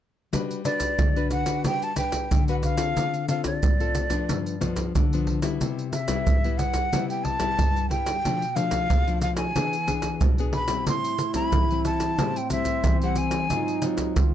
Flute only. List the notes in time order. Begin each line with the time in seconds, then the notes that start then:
0.65 D5
1.32 F#5
1.66 G5
1.84 A5
1.98 G5
2.50 F#5
2.64 F5
3.29 F5
3.46 D5
5.93 E5
6.58 F#5
7.09 G5
7.24 A5
7.90 G5
8.56 F5
9.22 F5
9.36 G#5
10.54 B5
10.89 C6
11.35 B5
11.86 A5
12.37 G5
12.52 E5
13.03 F#5
13.18 G#5